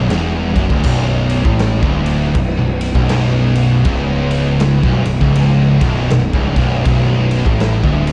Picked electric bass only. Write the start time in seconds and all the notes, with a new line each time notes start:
0.11 E1
0.56 F#1
0.70 D1
0.84 B0
1.45 A1
1.83 D1
2.35 B0
2.58 B0
2.95 B0
3.86 C#1
4.83 B0
5.06 B0
5.21 C#1
5.81 B0
6.11 B0
6.34 C#1
6.56 B0
6.86 B0
7.46 A1
7.83 D1